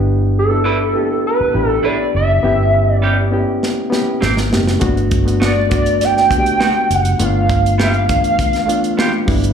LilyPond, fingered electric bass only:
\new Staff \with { instrumentName = "Fingered electric bass" } { \clef bass \time 4/4 \key g \major \tempo 4 = 101 g,,2 r8 a,,8 r8 fis,,8 | g,,4.~ g,,16 r4 r16 aes,,8 fis,,8 | g,,2. r8 fis,,8 | g,,4.~ g,,16 r4. r16 g,,8 | }